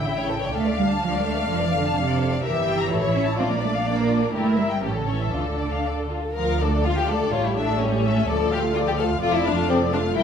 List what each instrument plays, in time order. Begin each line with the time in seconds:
Already playing: double bass section A1, viola section E4, violin section G5
0.06 cello section C#3, violin section E5
0.18 violin section C#5
0.30 violin section A4
0.42 violin section C#5
0.54 double bass section D2, cello section A3, viola section D4, violin section A4 F5
0.66 violin section D5
0.78 cello section G3, violin section F5
0.90 violin section A5
1.02 cello section F3, violin section F5
1.14 cello section G3, violin section D5
1.26 cello section A3, violin section A4
1.37 violin section D5
1.49 double bass section F1, cello section F3, violin section A4
1.61 cello section E3, violin section D5
1.72 cello section D3, violin section F5
1.85 violin section A5
1.97 cello section C3, violin section F5
2.09 violin section D5
2.20 violin section A4
2.33 violin section D5
2.43 double bass section G1, cello section E3, viola section G4, violin section A#4 E5
2.56 violin section E5
2.68 violin section G5
2.80 violin section A#5
2.90 double bass section A1, viola section E4, violin section A4 C#5
3.03 violin section C#5
3.15 cello section C#4, violin section E5
3.26 violin section A5
3.38 double bass section A#1, cello section C4, viola section D4, violin section F4 D5
3.50 cello section A#3, violin section A#4
3.62 cello section A3, violin section D5
3.74 violin section F5
3.86 cello section A#3, violin section D5
3.99 violin section A#4
4.11 violin section F4
4.22 violin section A#4
4.34 double bass section G1, cello section A3, viola section E4, violin section G4 A#4
4.47 violin section A#4
4.58 cello section G3, violin section E5
4.71 violin section G5
4.82 double bass section A1, cello section E3, viola section C#4, violin section G4 A4
4.96 cello section D3, violin section A4
5.08 cello section E3, violin section C#5
5.21 violin section E5
5.33 double bass section D2, cello section D3, viola section D4, violin section F4
5.47 violin section A4
5.59 violin section D5
5.73 violin section F5
5.85 violin section D5
5.98 violin section A4
6.11 violin section F4
6.23 violin section A4
6.36 double bass section D2, cello section D2, viola section F3 F4, violin section A#4 F5
6.61 viola section A3 D4, violin section A4 D5
6.86 viola section F3 F4, violin section F4 F5
6.99 violin section G4
7.10 viola section A3 D4, violin section A4 D5
7.33 double bass section A1, cello section A2, viola section G3 G4, violin section F4 C#5
7.46 violin section E4
7.57 viola section A3 A4, violin section D4 E5
7.80 viola section G3 G4, violin section C#4 C#5
8.05 viola section A3 A4, violin section E5
8.28 cello section D2, double bass section D2, viola section F3 A4, violin section A4 D5
8.51 viola section A3 F4, violin section G4 F5
8.76 viola section F3 A4, violin section F4 D5
8.87 violin section G4
8.99 viola section A3 F4, violin section A4 F5
9.23 double bass section F1, cello section F2, viola section F3 A4, violin section F4 D5
9.35 violin section E4
9.46 viola section A3 F4, violin section D4 F5
9.70 viola section F3 A4, violin section C4 D5
9.93 viola section A3 F4, violin section D4 F5
10.17 double bass section G1, cello section G2, viola section G3 A#4, violin section E4 G5